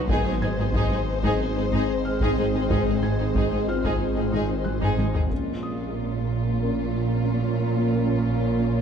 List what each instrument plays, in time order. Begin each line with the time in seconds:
Already playing: detuned saw bass B1, felt piano D#6
0.08 double bass section G#1, detuned saw bass G#1, cello section G#2, ambient pad G#3 C4 G#4 D#5, viola section D#4, violin section G#4 C5, taiko
0.25 cello section G#2, viola section D#4, violin section G#4
0.41 double bass section G#1, cello section G#2, viola section D#4, violin section G#4, felt piano G#6
0.58 cello section G#2, viola section D#4, violin section G#4
0.73 double bass section G#1, cello section G#2, viola section D#4, violin section G#4, taiko
0.90 cello section G#2, viola section D#4, violin section G#4
1.23 cello section G#2, viola section D#4, violin section G#4, taiko
1.55 cello section G#2, viola section D#4, violin section G#4
1.72 double bass section G#1, cello section G#2, viola section D#4, violin section G#4
2.05 felt piano F6
2.21 cello section G#2, viola section D#4, violin section G#4, taiko
2.37 double bass section G#1, cello section G#2, viola section D#4, violin section G#4
2.54 cello section G#2, viola section D#4, violin section G#4
2.70 double bass section G#1, cello section G#2, viola section D#4, violin section G#4, taiko
2.86 cello section G#2, viola section D#4, violin section G#4
3.02 double bass section G#1, cello section G#2, viola section D#4, violin section G#4, felt piano G#6
3.19 cello section G#2, viola section D#4, violin section G#4
3.35 double bass section G#1, cello section G#2, viola section D#4, violin section G#4, taiko
3.52 cello section G#2, viola section D#4, violin section G#4
3.68 felt piano F4 F6
3.84 cello section G#2, viola section D#4, violin section G#4, taiko
4.17 cello section G#2, viola section D#4, violin section G#4
4.32 double bass section G#1, cello section G#2, viola section D#4, violin section G#4
4.64 felt piano F#6, taiko high
4.81 cello section G#2, viola section D#4, violin section G#4, taiko low-mid
4.98 double bass section G#1, cello section G#2, viola section D#4, violin section G#4, taiko high
5.14 cello section G#2, viola section D#4, violin section G#4, taiko low
5.30 double bass section A#1, cello section A#2, ambient pad A#3 C#4 F4 C#5, viola section C#4, french horn section C#4 A#4, violin section F4 A#4, taiko
5.63 felt piano D#6
6.62 french horn section C#4 A#4
7.91 french horn section C#4 A#4